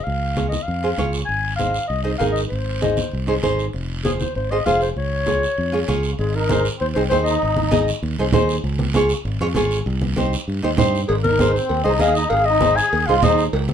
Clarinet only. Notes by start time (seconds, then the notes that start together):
0.03 F5
0.49 D#5
0.62 F5
1.25 G#5
1.56 F5
1.87 D#5
2.03 D#5
2.18 F5
2.32 D#5
2.48 C5
4.05 G#4
4.20 C5
4.36 C5
4.51 D#5
4.66 F5
4.82 C5
4.98 C#5
6.19 G#4
6.36 A#4
6.81 C5
6.94 C5
7.09 C5
7.24 D#5
11.08 G#4
11.23 A#4
11.53 C5
11.84 D#5
12.00 F5
12.16 D#5
12.29 F5
12.45 D#5
12.76 G#5
13.07 F5
13.23 D#5